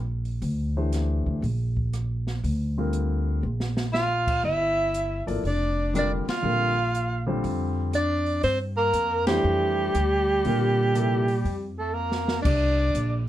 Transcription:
Already playing: upright bass A#1
0.25 open hi-hat
0.42 upright bass D2, open hi-hat
0.77 grand piano E3 A3 D4 G4 C5
0.92 snare, closed hi-hat
1.26 upright bass D2, kick
1.42 upright bass A#1, open hi-hat
1.77 kick
1.93 cross-stick, closed hi-hat
2.27 snare
2.44 upright bass D2, open hi-hat
2.78 grand piano D3 G3 C4 F4 A#4
2.93 closed hi-hat
3.43 upright bass A#1
3.60 snare
3.77 snare
3.92 tenor saxophone F4, soprano saxophone F5, snare
4.27 kick, crash
4.44 upright bass G1, tenor saxophone E4, soprano saxophone E5
4.94 closed hi-hat
5.27 upright bass G#1, grand piano F3 A#3 E4 A4 D5, open hi-hat
5.43 upright bass F1, tenor saxophone D4, soprano saxophone D5, open hi-hat
5.94 grand piano D3 G3 C4 F4 A#4, tenor saxophone D4, cross-stick, closed hi-hat
5.99 soprano saxophone D5
6.26 tenor saxophone F4, muted upright bass stroke, snare, ride
6.31 soprano saxophone F5
6.42 upright bass A#1, grand piano D3 G3 C4 F4 A#4
6.95 closed hi-hat
7.26 grand piano D3 G3 C4 F4 C5
7.44 upright bass F2, open hi-hat
7.93 tenor saxophone D4, soprano saxophone D5, cross-stick, closed hi-hat
8.26 open hi-hat
8.43 upright bass G2, tenor saxophone C4, soprano saxophone C5, open hi-hat
8.77 tenor saxophone A#3, soprano saxophone A#4
8.93 upright bass F2, closed hi-hat
9.26 grand piano E3 A3 D4 G4 C5, tenor saxophone G3, soprano saxophone G4, snare, ride
9.44 upright bass F2
9.95 upright bass D2, cross-stick, closed hi-hat
10.45 upright bass A#2, grand piano D3 G3 C4 F4 A#4, open hi-hat
10.94 grand piano C3 F3 A#3 E4 A4, closed hi-hat
11.28 open hi-hat
11.45 upright bass F2, open hi-hat
11.78 tenor saxophone A3, soprano saxophone A4
11.93 tenor saxophone A#3, soprano saxophone A#4
12.12 snare
12.28 snare
12.42 upright bass C2, tenor saxophone D4, soprano saxophone D5, kick, crash
12.95 upright bass A#1, closed hi-hat

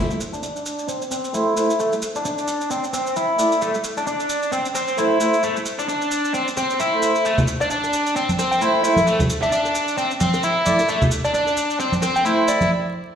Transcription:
Already playing: overdriven electric guitar A3
0.11 shaker
0.20 shaker
0.33 overdriven electric guitar D4, shaker
0.43 overdriven electric guitar D4, shaker
0.56 shaker
0.66 shaker
0.79 shaker
0.88 overdriven electric guitar C4, shaker
1.02 shaker
1.11 overdriven electric guitar C4, shaker
1.24 shaker
1.34 brass ensemble A3 E4 C5, overdriven electric guitar E4, shaker
1.57 brass ensemble A3 E4 C5, shaker
1.70 shaker
1.80 overdriven electric guitar A3, shaker
1.93 shaker
2.02 shaker
2.15 overdriven electric guitar D4, shaker
2.25 overdriven electric guitar D4, shaker
2.38 shaker
2.48 shaker
2.61 shaker
2.71 overdriven electric guitar C4, shaker
2.84 shaker
2.93 overdriven electric guitar C4, shaker
3.07 shaker
3.16 overdriven electric guitar E4, shaker
3.38 brass ensemble A3 E4 D5, shaker
3.52 shaker
3.61 overdriven electric guitar A3, shaker
3.74 shaker
3.84 shaker
3.97 overdriven electric guitar D4, shaker
4.07 overdriven electric guitar D4, shaker
4.20 shaker
4.30 shaker
4.43 shaker
4.52 overdriven electric guitar C4, shaker
4.65 shaker
4.75 overdriven electric guitar C4, shaker
4.88 shaker
4.98 brass ensemble A3 E4 C5, overdriven electric guitar E4, shaker
5.20 brass ensemble A3 E4 C5, shaker
5.33 shaker
5.43 overdriven electric guitar A3, shaker
5.56 shaker
5.66 shaker
5.79 overdriven electric guitar D4, shaker
5.89 overdriven electric guitar D4, shaker
6.02 shaker
6.11 shaker
6.25 shaker
6.34 overdriven electric guitar C4, shaker
6.48 shaker
6.57 overdriven electric guitar C4, shaker
6.70 shaker
6.80 overdriven electric guitar E4, shaker
6.93 brass ensemble A3 E4 C5
7.02 shaker
7.15 shaker
7.25 overdriven electric guitar A3, shaker
7.38 low conga, shaker
7.48 shaker
7.61 overdriven electric guitar D4, soft synth lead D5, shaker
7.70 overdriven electric guitar D4, soft synth lead D5, shaker
7.84 high bongo, shaker
7.93 shaker
8.06 shaker
8.16 overdriven electric guitar C4, shaker
8.29 high conga, shaker
8.39 overdriven electric guitar C4, high bongo, shaker
8.51 soft synth lead G5, shaker
8.61 brass ensemble A3 E4 C5, overdriven electric guitar E4, shaker
8.83 brass ensemble A3 E4 C5, soft synth lead E5, shaker
8.96 high bongo, high conga, shaker
9.07 overdriven electric guitar A3, shaker
9.19 high conga, low conga, shaker
9.30 shaker
9.42 overdriven electric guitar D4, soft synth lead E5, shaker
9.52 overdriven electric guitar D4, soft synth lead E5, shaker
9.65 high bongo, shaker
9.75 shaker
9.88 shaker
9.98 overdriven electric guitar C4, shaker
10.11 shaker
10.20 overdriven electric guitar C4, high conga, shaker
10.33 high bongo, shaker
10.43 overdriven electric guitar E4, shaker
10.66 brass ensemble A3 E4 D5, high conga, shaker
10.79 high bongo, shaker
10.88 overdriven electric guitar A3, shaker
11.02 low conga, shaker
11.11 shaker
11.25 overdriven electric guitar D4, soft synth lead D5, shaker
11.34 overdriven electric guitar D4, soft synth lead D5, shaker
11.46 high bongo, shaker
11.57 shaker
11.70 shaker
11.79 overdriven electric guitar C4, shaker
11.92 high conga, shaker
12.02 overdriven electric guitar C4, high bongo, shaker
12.16 soft synth lead G5, shaker
12.25 brass ensemble A3 E4 C5, overdriven electric guitar E4, shaker
12.48 soft synth lead D5, shaker
12.61 high bongo, high conga, shaker

